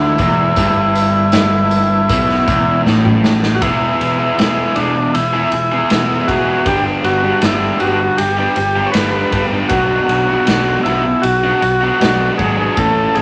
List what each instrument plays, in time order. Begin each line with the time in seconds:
Already playing: fingered electric bass D2, overdriven electric guitar D3, transistor combo organ E4
0.18 fingered electric bass E1, overdriven electric guitar E2, kick, closed hi-hat
0.56 fingered electric bass G1, overdriven electric guitar G2, kick, closed hi-hat
0.95 closed hi-hat
1.32 snare, closed hi-hat
1.71 closed hi-hat
2.09 fingered electric bass B1, overdriven electric guitar B2, kick, closed hi-hat
2.29 snare
2.48 fingered electric bass E1, overdriven electric guitar E2, kick, closed hi-hat
2.86 fingered electric bass A1, overdriven electric guitar A2, snare
3.05 mid tom
3.24 snare
3.43 snare
3.55 transistor combo organ F#4
3.61 fingered electric bass E1, overdriven electric guitar E2 B2 E3 B3 E4 G#4, transistor combo organ E4, kick, ride
4.01 fingered electric bass E1, ride
4.18 overdriven electric guitar E3 B3 E4 G#4
4.38 fingered electric bass E1, overdriven electric guitar E2 B2 E3 B3 E4 G#4, snare, ride
4.76 fingered electric bass E1, overdriven electric guitar E3 B3 E4 G#4, transistor combo organ D4, ride
4.96 muted overdriven electric guitar stroke
5.14 fingered electric bass E1, transistor combo organ E4, ride
5.33 overdriven electric guitar E3 B3 E4 G#4
5.52 fingered electric bass E1, muted overdriven electric guitar stroke, ride
5.72 overdriven electric guitar E3 B3 E4 G#4
5.89 fingered electric bass E1, overdriven electric guitar E2 B2 E3 B3 E4 G#4, snare, ride
6.28 fingered electric bass E1, overdriven electric guitar E3 B3 E4 G#4, transistor combo organ F#4, kick, ride
6.47 overdriven electric guitar E3 B3 E4 G#4
6.66 fingered electric bass G1, overdriven electric guitar G2 D3 G3 B3 D4 G4, transistor combo organ G4, kick, ride
7.04 fingered electric bass G1, transistor combo organ F#4, ride
7.23 overdriven electric guitar G3 B3 D4 G4
7.42 fingered electric bass G1, overdriven electric guitar G2 D3 G3 B3, transistor combo organ E4, snare, ride
7.46 overdriven electric guitar D4 G4
7.80 fingered electric bass G1, overdriven electric guitar G3 B3 D4 G4, transistor combo organ F#4, ride
8.00 muted overdriven electric guitar stroke
8.17 fingered electric bass G1, transistor combo organ G4, ride
8.38 overdriven electric guitar G3 B3 D4 G4
8.56 fingered electric bass G1, muted overdriven electric guitar stroke, ride
8.76 overdriven electric guitar G3 B3 D4 G4
8.86 transistor combo organ C#5
8.92 fingered electric bass G1, overdriven electric guitar G2 D3 G3 B3 D4, transistor combo organ B4, snare, ride
8.96 overdriven electric guitar G4
9.31 fingered electric bass G1, overdriven electric guitar G3 B3 D4 G4, kick, ride
9.52 overdriven electric guitar G3 B3 D4 G4
9.69 fingered electric bass B1, overdriven electric guitar B2 F#3 B3 D4 F#4, transistor combo organ F#4, kick, ride
10.08 fingered electric bass B1, ride
10.28 overdriven electric guitar B3 D4 F#4
10.46 fingered electric bass B1, overdriven electric guitar B2 F#3 B3 D4 F#4, snare, ride
10.83 fingered electric bass B1, overdriven electric guitar F#3 B3 D4, transistor combo organ E4, ride
10.88 overdriven electric guitar F#4
11.05 muted overdriven electric guitar stroke
11.22 fingered electric bass B1, transistor combo organ F#4, ride
11.44 overdriven electric guitar B3 D4 F#4
11.62 fingered electric bass B1, muted overdriven electric guitar stroke, ride
11.81 overdriven electric guitar B3 D4 F#4
12.00 fingered electric bass B1, overdriven electric guitar B2 F#3 B3 D4 F#4, snare, ride
12.38 fingered electric bass G#1, overdriven electric guitar F#3 B3 D4 F#4, transistor combo organ G#4, kick, ride
12.58 overdriven electric guitar B3 D4 F#4
12.77 fingered electric bass A1, overdriven electric guitar A2 E3 A3 C#4 A4, transistor combo organ A4, kick, ride
13.15 fingered electric bass A1, transistor combo organ G#4, ride